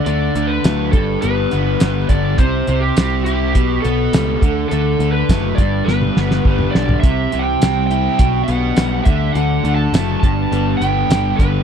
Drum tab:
HH |x-x-x-x-x-x-x-x-|x-x-x-x-x-x-x-x-|x-x-x-x---------|x-x-x-x-x-x-x-x-|
TB |----x-------x---|----x-------x---|----x-----------|----x-------x---|
SD |----o-------o---|----o-------o---|----o---o-oo--o-|----o-------o---|
T1 |----------------|----------------|---------o------|----------------|
T2 |----------------|----------------|-------------o--|----------------|
FT |----------------|----------------|---------------o|----------------|
BD |------o-------o-|o-------o-----o-|----o-o-----o---|o-------o-----o-|

HH |x-x-x-x-x-x-x-x-|
TB |----x-------x---|
SD |----o-------o---|
T1 |----------------|
T2 |----------------|
FT |----------------|
BD |------o-------o-|